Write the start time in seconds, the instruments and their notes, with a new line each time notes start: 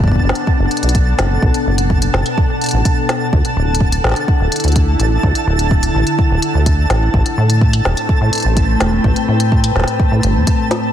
Already playing: acid bass F#1, ambient pad B2 B3 D4 A4 F#5, synth texture A5
0.04 kick
0.08 kick
0.11 kick
0.15 kick
0.19 acid bass F#1, kick
0.29 snare
0.35 closed hi-hat
0.47 kick
0.59 acid bass F#1
0.71 closed hi-hat
0.77 closed hi-hat
0.83 acid bass B1, closed hi-hat
0.89 closed hi-hat
0.95 kick, closed hi-hat
1.19 acid bass F#1, snare, closed hi-hat
1.42 acid bass B1, kick
1.54 closed hi-hat
1.66 acid bass F#1
1.78 closed hi-hat
1.90 kick
2.02 closed hi-hat
2.14 acid bass F#1, snare
2.26 closed hi-hat
2.38 kick
2.61 closed hi-hat
2.64 closed hi-hat
2.66 closed hi-hat
2.69 closed hi-hat
2.71 acid bass A1, closed hi-hat
2.85 kick, closed hi-hat
3.09 snare, closed hi-hat
3.33 acid bass D2, ambient pad D3, kick
3.45 closed hi-hat
3.57 acid bass D1
3.75 closed hi-hat
3.79 ambient pad E4, kick
3.92 closed hi-hat
4.04 acid bass A1, snare
4.07 snare
4.09 snare
4.11 snare
4.14 snare, closed hi-hat
4.28 kick
4.40 acid bass D1
4.52 closed hi-hat
4.56 closed hi-hat
4.60 acid bass D2, closed hi-hat
4.64 closed hi-hat
4.68 closed hi-hat
4.72 closed hi-hat
4.76 kick, closed hi-hat
5.00 acid bass A1, closed hi-hat
5.23 acid bass D2, kick
5.35 closed hi-hat
5.47 acid bass D1
5.59 closed hi-hat
5.71 kick
5.83 closed hi-hat
5.95 acid bass A1
6.07 closed hi-hat
6.19 kick
6.30 acid bass D1
6.42 closed hi-hat
6.54 acid bass D2
6.66 kick, closed hi-hat
6.90 acid bass A1, snare, closed hi-hat
7.14 acid bass A1, ambient pad A2, kick
7.21 ambient pad A3
7.26 closed hi-hat
7.38 acid bass A2
7.46 ambient pad C4
7.50 closed hi-hat
7.61 kick
7.73 closed hi-hat
7.82 acid bass E1, ambient pad B4, snare
7.97 closed hi-hat
8.09 kick
8.15 ambient pad G5
8.21 acid bass A2
8.33 closed hi-hat
8.35 closed hi-hat
8.38 closed hi-hat
8.40 closed hi-hat
8.42 acid bass A1, closed hi-hat
8.57 kick, closed hi-hat
8.80 acid bass E1, snare, closed hi-hat
9.04 acid bass A1, kick
9.16 closed hi-hat
9.28 acid bass A2
9.40 closed hi-hat
9.52 kick
9.64 closed hi-hat
9.76 acid bass E1, snare
9.80 snare
9.84 snare, closed hi-hat
10.00 kick
10.11 acid bass A2
10.23 acid bass G1, closed hi-hat
10.35 acid bass E2
10.47 kick, closed hi-hat
10.71 snare, closed hi-hat